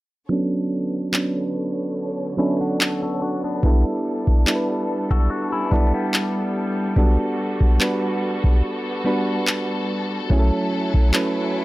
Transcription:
0.29 D3 F#3 B3 C#4 D4 A4 C#5
1.12 F#3 B3 C#4 D4 B4, clap
2.37 F#3 B3 C#4 D4 E4 A4
2.61 D4 F#4
2.80 F#4 A4, clap
3.03 F#4 A4
3.22 D4 F#4
3.44 B3 D4
3.63 G3 B3 D4 E4 A4, kick
4.27 kick
4.46 G3 B3 D4 E4 A4, clap
4.55 B4
5.11 F#4 A4, kick
5.30 D4 F#4
5.52 C#4 E4
5.71 G3 B3 D4 E4 A4, kick
5.94 G3 B3
6.14 clap
6.96 G3 B3 D4 F#4 A4, kick
7.61 kick
7.80 G3 B3 D4 F#4 B4, clap
8.44 kick
9.04 G3 B3 D4 F#4 B4
9.47 clap
10.30 F#3 A3 C#4 E4 G#4, kick
10.39 A4
10.94 kick
11.13 F#3 A3 C#4 E4 B4, clap

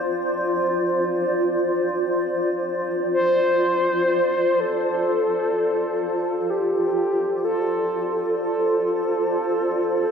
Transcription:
Already playing: F4 C5 D5
3.14 C5
4.59 F4 A4
6.27 C5
6.50 G4
6.81 D5
7.45 A4
8.41 A4

